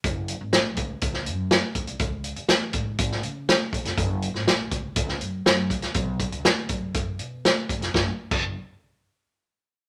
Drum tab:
CC |----------------|----------------|----------------|----------------|
HH |x-x-x-x-x-x-x-xx|x-xxx-x-x-x-x-xx|x-x-x-x-x-x-x-xx|x-xxx-x-x-x-x-xx|
SD |----o----o--o---|----o----o--o--o|---oo----o--o--o|----o-------o--o|
BD |o-----o-o-----o-|o-----o-o-----o-|o-----o-o-----o-|o-o---o-o-----o-|

CC |---x------------|
HH |----------------|
SD |o---------------|
BD |o--o------------|